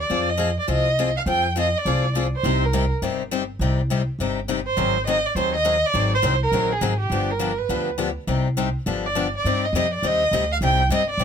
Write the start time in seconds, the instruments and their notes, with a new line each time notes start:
0.00 violin D5
0.10 upright bass F2, steel-string acoustic guitar F3 C4 F4 G#4
0.29 violin D#5
0.37 steel-string acoustic guitar F3 C4 F4 G#4
0.59 violin D5
0.68 upright bass C2, steel-string acoustic guitar F3 C4 F4 G#4, violin D#5
0.99 steel-string acoustic guitar F3 C4 F4 G#4
1.17 violin F5
1.26 upright bass F2, steel-string acoustic guitar F3 C4 F4 G#4, violin G5
1.56 steel-string acoustic guitar F3 C4 F4 G#4, violin D#5
1.78 violin D5
1.85 upright bass C2, steel-string acoustic guitar F3 C4 F4 G#4
2.15 steel-string acoustic guitar F3 C4 F4 G#4
2.37 violin C5
2.43 upright bass C2, steel-string acoustic guitar C3 G3 C4 D#4 G4
2.65 violin A#4
2.73 steel-string acoustic guitar C3 G3 C4 D#4 G4
3.02 upright bass G1, steel-string acoustic guitar C3 G3 C4 D#4 G4
3.31 steel-string acoustic guitar C3 G3 C4 D#4 G4
3.59 upright bass C2, steel-string acoustic guitar C3 G3 C4 D#4 G4
3.90 steel-string acoustic guitar C3 G3 C4 D#4 G4
4.19 upright bass G1, steel-string acoustic guitar C3 G3 C4 D#4 G4
4.48 steel-string acoustic guitar C3 G3 C4 D#4 G4
4.67 violin C5
4.77 upright bass G#1, steel-string acoustic guitar D#3 F#3 C4 D#4 G#4
5.07 steel-string acoustic guitar D#3 F#3 C4 D#4 G#4, violin D#5
5.26 violin D5
5.35 upright bass D#2, steel-string acoustic guitar D#3 F#3 C4 D#4 G#4, violin C5
5.55 violin D#5
5.65 steel-string acoustic guitar D#3 F#3 C4 D#4 G#4
5.86 violin D5
5.93 upright bass G#1, steel-string acoustic guitar D#3 F#3 C4 D#4 G#4
6.14 violin C5
6.22 upright bass C2, steel-string acoustic guitar D#3 F#3 C4 D#4 G#4
6.43 violin A#4
6.52 upright bass A#1, steel-string acoustic guitar D#3 F#3 C4 D#4 G#4
6.72 violin G#4
6.81 upright bass G#1, steel-string acoustic guitar D#3 F#3 C4 D#4 G#4
6.99 violin G4
7.10 upright bass G1, steel-string acoustic guitar D3 F3 B3 D4 G4
7.31 violin A#4
7.39 steel-string acoustic guitar D3 F3 B3 D4 G4
7.58 violin B4
7.69 upright bass D2, steel-string acoustic guitar D3 F3 B3 D4 G4
7.98 steel-string acoustic guitar D3 F3 B3 D4 G4
8.27 upright bass C2, steel-string acoustic guitar C3 G3 C4 D#4 G4
8.57 steel-string acoustic guitar C3 G3 C4 D#4 G4
8.86 upright bass G1, steel-string acoustic guitar D3 F3 B3 D4 G4
9.06 violin D5
9.15 steel-string acoustic guitar D3 F3 B3 D4 G4
9.37 violin D5
9.44 upright bass G2, steel-string acoustic guitar C3 G3 C4 D#4 G4
9.65 violin D#5
9.73 upright bass F2, steel-string acoustic guitar C3 G3 C4 D#4 G4, violin D#5
9.94 violin D5
10.03 upright bass D#2, steel-string acoustic guitar C3 G3 C4 D#4 G4
10.07 violin D#5
10.31 upright bass D2, steel-string acoustic guitar C3 G3 C4 D#4 G4
10.52 violin F5
10.61 upright bass C2, steel-string acoustic guitar C3 G3 C4 D#4 G4, violin G5
10.89 upright bass G1, steel-string acoustic guitar C3 G3 C4 D#4 G4
10.94 violin D#5
11.09 violin D5
11.18 upright bass A#1, steel-string acoustic guitar C3 G3 C4 D#4 G4